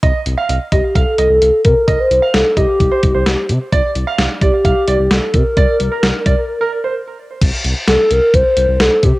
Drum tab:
CC |--------|--------|--------|--------|
HH |xxxxxxxx|xxxxxxxx|xxxxxxxx|xxxx----|
SD |--------|--o---o-|--o---o-|--o-----|
BD |o--oo--o|o--ooo--|o--oo--o|o--o----|

CC |x-------|
HH |xxxxxxxx|
SD |--o---o-|
BD |o---o--o|